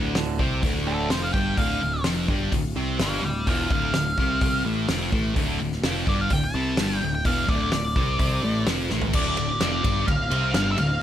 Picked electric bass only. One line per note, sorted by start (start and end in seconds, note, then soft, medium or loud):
0.00 0.14 D1 medium
0.16 0.38 D1 medium
0.39 0.62 C2 medium
0.63 1.07 D1 medium
1.11 1.33 F1 medium
1.34 1.56 G1 medium
1.57 1.80 D1 medium
1.81 2.04 D1 medium
2.05 2.28 F1 medium
2.28 2.51 G1 medium
2.52 2.74 D1 medium
2.76 2.98 C2 medium
3.00 3.22 G1 medium
3.23 3.45 D1 medium
3.47 3.69 E1 medium
3.70 3.92 D1 medium
3.93 4.16 D1 medium
4.18 4.40 C2 medium
4.41 4.64 C2 medium
4.65 4.87 A1 medium
4.88 5.11 F1 medium
5.12 5.35 A1 medium
5.36 5.58 D1 medium
5.59 5.82 D1 medium
5.82 6.05 F1 loud
6.07 6.29 G1 medium
6.31 6.53 D1 medium
6.54 6.76 C2 loud
6.78 7.00 G1 medium
7.03 7.24 D1 medium
7.25 7.47 E1 loud
7.48 7.70 D1 medium
7.72 7.94 D1 medium
7.96 8.18 C2 loud
8.19 8.41 C2 medium
8.43 8.65 A1 medium
8.66 8.88 F1 medium
8.90 9.12 A1 medium
9.14 9.36 D1 medium
9.37 9.59 D1 medium
9.61 9.83 F1 loud
9.84 10.06 G1 medium
10.08 10.30 D1 medium
10.31 10.53 C2 medium
10.55 10.77 G1 medium
10.78 11.00 D1 medium